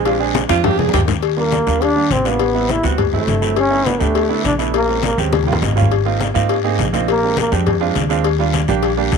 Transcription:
Already playing: A#1
0.05 G#3 C4 D4 F4, cowbell, high conga, long guiro
0.19 G#3 C4 D4 G#4, high conga
0.35 cowbell, high bongo, high conga, short guiro
0.48 F2 G#3 C4 D4 F4, high bongo, high conga, short guiro
0.63 G#3 C4 D4 F4 G4, cowbell, low bongo, high conga, low conga, long guiro
0.79 G#4, low bongo, high conga
0.89 high conga
0.93 D#2 G4, cowbell, low bongo, short guiro
0.98 low conga
1.08 low bongo, low conga, short guiro
1.23 cowbell, high conga, long guiro
1.37 G3 A#3 D4 F4, high conga
1.52 cowbell, high conga, short guiro
1.67 D#2 G3 A#3 D4 F4, high conga, short guiro
1.81 D4, cowbell, high conga, long guiro
1.95 G3 A#3 D4 G4, high conga
2.10 A1 C4, cowbell, high conga, short guiro
2.25 G3 A#3 B3 D4 F4, cowbell, short guiro
2.39 cowbell, high conga, long guiro
2.54 G3 B3 C4 E4, high conga
2.69 E4, cowbell, high conga, short guiro
2.83 D2 G3 B3 C4 F#4, high conga, short guiro
2.98 cowbell, high conga, low conga, long guiro
3.12 F#3 A3 C4 E4, high conga, low conga
3.27 G1, cowbell, high conga, short guiro
3.41 F#3 A3 C4 E4, high conga, short guiro
3.56 C#4, cowbell, high conga, long guiro
3.70 A3 B3 D4 E4, high conga
3.86 B3, cowbell, high conga, short guiro
3.99 D2 A3 B3 D4 G4, short guiro
4.15 cowbell, high conga, long guiro
4.29 A3 B3 D4 E4, high conga
4.44 A#1 D4, cowbell, high conga, short guiro
4.58 A3 B3 D4 E4, cowbell, short guiro
4.74 A#3, cowbell, high conga, long guiro
4.88 G#3 C4 C#4 F4, high conga
5.03 A#3, cowbell, high conga, short guiro
5.18 D#2 G#3 C4 C#4 G4, high conga, short guiro
5.33 cowbell, high conga, long guiro
5.43 G3, high conga
5.47 A#3 C#4 F4 G5
5.53 F5, low conga
5.62 G#1 D#5, cowbell, low conga, short guiro
5.72 G3 A#3 C#5, low conga
5.77 C#4 F4, short guiro
5.81 low conga
5.91 cowbell, high conga, long guiro
6.05 A#3 C4 D#4 F4, high conga
6.20 cowbell, high conga, short guiro
6.34 G#2 A#3 C4 D#4 F4, high conga, short guiro
6.49 cowbell, high conga, long guiro
6.64 A#3 C4 D#4 G#4, high conga
6.79 A#1, cowbell, high conga, short guiro
6.93 A#3 C4 D#4 F4, cowbell, high conga, short guiro
7.08 A#3, cowbell, long guiro
7.22 G#3 C4 D4 G4, high conga
7.37 A#3, cowbell, high conga, short guiro
7.51 F2 G#3 C4 D4 G4, high conga, short guiro
7.66 cowbell, high conga, low conga, long guiro
7.80 G#3 C4 D4 F4, high conga
7.95 D#2, cowbell, high conga, short guiro
8.09 G#3 C4 D4 F4, high conga, short guiro
8.24 cowbell, long guiro
8.39 G3 A#3 D4 F4, high conga
8.54 cowbell, high conga, short guiro
8.68 A#1 G3 A#3 D4 G4, short guiro
8.82 cowbell, high conga, long guiro
8.97 G3 A#3 D4 G4, high conga
9.12 D#2, cowbell, high conga, short guiro

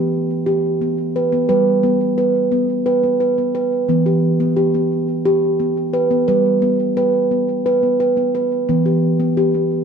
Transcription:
Already playing: E3 B3
0.46 G4
0.81 B3
1.16 B4
1.32 B3
1.49 G3 B4
1.83 B3
2.18 B4
2.52 B3
2.86 B4
3.03 B3
3.20 B4
3.38 B3
3.55 B4
3.89 E3 B3
4.06 G4
4.40 B3
4.57 G4
4.74 B3
5.25 G4
5.60 B3
5.93 B4
6.11 B3
6.28 G3 B4
6.62 B3
6.97 B4
7.31 B3
7.66 B4
7.83 B3
8.00 B4
8.17 B3
8.35 B4
8.69 E3 B3
8.86 G4
9.20 B3
9.37 G4
9.54 B3

